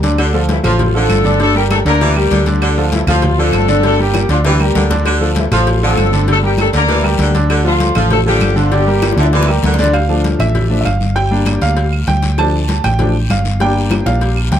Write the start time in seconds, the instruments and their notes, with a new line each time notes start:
Already playing: fingered electric bass D2
0.03 grand piano D3 D4 D5, cowbell, high conga, short guiro
0.18 saxophone section D3, cowbell, high conga, long guiro, claves
0.34 grand piano F3 F4 A4, high conga
0.49 horn section E3 A3 E4, cowbell, high conga, short guiro
0.63 fingered electric bass A1, grand piano F3 F4 A4, saxophone section F3, horn section F3 A3 F4, cowbell, high conga, low conga, short guiro, claves
0.79 cowbell, high conga, low conga, long guiro
0.94 saxophone section D3, grand piano F3 F4 A4, horn section A3 C4 A4, high conga
1.09 fingered electric bass G1, cowbell, high conga, short guiro, claves
1.24 grand piano D3 D4 D5, high conga, short guiro
1.40 grand piano D3 D4 D5, horn section A3 D4 A4, cowbell, high conga, long guiro
1.55 grand piano G3 G4 A#4, horn section G3 A#3 G4, high conga
1.71 horn section A3 D4 A4, cowbell, high conga, short guiro, claves
1.85 fingered electric bass D2, saxophone section D3, grand piano D3 D4 D5, horn section A#3 D4 A#4, cowbell, high conga, short guiro
2.00 grand piano D3 D4 D5, saxophone section E3, cowbell, high conga, long guiro
2.16 grand piano G3 G4 A#4, horn section G3 A#3 G4, high conga, claves
2.31 fingered electric bass D2, saxophone section D3, cowbell, high conga, short guiro
2.46 grand piano D3 D4 D5, cowbell, high conga, short guiro
2.61 saxophone section D3, cowbell, long guiro, claves
2.77 grand piano F3 F4 A4, high conga
2.92 horn section E3 A3 E4, cowbell, high conga, short guiro
3.07 fingered electric bass D2, saxophone section F3, grand piano F3 F4 A4, horn section F3 A3 F4, cowbell, high conga, low conga, short guiro, claves
3.22 cowbell, high conga, low conga, long guiro
3.38 saxophone section D3, grand piano F3 F4 A4, horn section A3 C4 A4, high conga
3.52 fingered electric bass G1, cowbell, high conga, short guiro, claves
3.68 grand piano D3 D4 D5, high conga, short guiro
3.83 grand piano D3 D4 D5, horn section A3 D4 A4, cowbell, high conga, long guiro
3.99 grand piano G3 G4 A#4, horn section G3 A#3 G4, high conga
4.14 cowbell, high bongo, high conga, short guiro, claves
4.29 fingered electric bass D2, saxophone section D3, grand piano D3 D4 D5, horn section F3 A3 F4, cowbell, high conga, short guiro
4.44 grand piano D3 D4 D5, saxophone section E3, horn section G3 A#3 G4, cowbell, low bongo, high conga, long guiro
4.60 grand piano G3 G4 A#4, horn section G3 A#3 G4, high conga, claves
4.75 fingered electric bass D2, saxophone section D3, cowbell, low bongo, high conga, short guiro
4.90 grand piano D3 D4 D5, cowbell, low bongo, high conga, short guiro
5.05 saxophone section D3, cowbell, high conga, long guiro, claves
5.21 grand piano F3 F4 A4, high conga
5.36 horn section E3 A3 E4, cowbell, high conga, short guiro
5.51 fingered electric bass A1, saxophone section F3, grand piano F3 F4 A4, horn section F3 A3 F4, cowbell, high conga, low conga, short guiro, claves
5.67 cowbell, high conga, long guiro
5.82 saxophone section D3, grand piano F3 F4 A4, horn section A3 C4 A4, high conga
5.97 fingered electric bass G1, cowbell, high conga, short guiro, claves
6.12 grand piano D3 D4 D5, high conga, short guiro
6.27 grand piano D3 D4 D5, horn section A3 D4 A4, cowbell, high conga, long guiro
6.43 grand piano G3 G4 A#4, horn section G3 A#3 G4, high conga
6.58 horn section D4, cowbell, high conga, short guiro, claves
6.62 horn section A3 A4
6.73 fingered electric bass D2, grand piano D3 D4 D5, saxophone section D3, horn section D4, cowbell, short guiro
6.77 horn section A#3 A#4
6.88 grand piano D3 D4 D5, saxophone section E3, cowbell, high conga, long guiro
7.03 grand piano G3 G4 A#4, horn section G3 A#3 G4, high conga, claves
7.18 fingered electric bass D2, saxophone section D3, cowbell, high conga, short guiro
7.35 grand piano D3 D4 D5, cowbell, high conga, short guiro
7.50 saxophone section D3, cowbell, high conga, long guiro, claves
7.65 grand piano F3 F4 A4, horn section F3 A3 F4, high conga
7.80 cowbell, high conga, short guiro
7.95 fingered electric bass A1, grand piano F3 F4 A4, saxophone section F3, cowbell, high conga, low conga, short guiro, claves
8.10 horn section A3 D4 A4, cowbell, high conga, low conga, long guiro
8.26 saxophone section D3, grand piano F3 F4 A4, horn section G3 A#3 G4, high conga
8.40 fingered electric bass G1, cowbell, high conga, short guiro, claves
8.56 grand piano D3 D4 D5, horn section F3 A3 F4, short guiro
8.71 grand piano D3 D4 D5, horn section G3 A#3 G4, cowbell, high conga, long guiro
8.87 grand piano G3 G4 A#4, high conga
9.02 cowbell, high bongo, high conga, short guiro, claves
9.12 high bongo
9.17 fingered electric bass D2, grand piano D3 D4 D5, saxophone section D3, horn section E3 G3 E4, cowbell, high conga, short guiro
9.23 high bongo
9.32 grand piano D3 D4 D5, saxophone section E3, horn section F3 A#3 F4, cowbell, high bongo, high conga, long guiro
9.43 low bongo
9.48 grand piano G3 G4 A#4, horn section G3 A#3 G4, high conga, claves
9.63 fingered electric bass D2, saxophone section D3, cowbell, low bongo, high conga, short guiro
9.74 low bongo
9.78 grand piano D3 D4 D5, cowbell, high conga, short guiro
9.84 low bongo
9.93 grand piano F5, cowbell, high conga, long guiro, claves
10.09 grand piano F3 A3 D4, high conga
10.24 cowbell, high conga, short guiro
10.39 fingered electric bass A1, grand piano E5, cowbell, high conga, low conga, short guiro, claves
10.55 cowbell, high conga, low conga, long guiro
10.70 grand piano F3 A3 D4, high conga
10.81 fingered electric bass G1, grand piano E5
10.85 grand piano F5, cowbell, high conga, short guiro, claves
11.00 high conga, short guiro
11.16 grand piano G5, cowbell, long guiro
11.31 grand piano G3 A#3 D4, high conga
11.46 cowbell, high conga, short guiro, claves
11.61 fingered electric bass D2, grand piano F5, cowbell, high conga, short guiro
11.77 cowbell, high conga, long guiro
11.93 high conga, claves
12.07 fingered electric bass D2, grand piano G5, cowbell, high conga, short guiro
12.22 cowbell, high conga, short guiro
12.38 grand piano F3 A3 D4 A5, cowbell, long guiro, claves
12.54 high conga
12.69 cowbell, high conga, short guiro
12.84 fingered electric bass A1, grand piano G5, cowbell, high conga, low conga, short guiro, claves
12.99 grand piano F3 A3 D4, cowbell, high conga, low conga, long guiro
13.15 high conga
13.30 fingered electric bass G1, grand piano F5, cowbell, high conga, short guiro, claves
13.45 high conga, short guiro
13.60 grand piano G3 A#3 D4 G5, cowbell, high conga, long guiro
13.76 high conga
13.91 cowbell, high bongo, high conga, short guiro, claves
14.06 fingered electric bass A#1, grand piano F5, cowbell, high bongo, short guiro
14.21 cowbell, high conga, long guiro
14.37 high conga, claves
14.51 fingered electric bass D2, grand piano G5, cowbell, low bongo, high conga, short guiro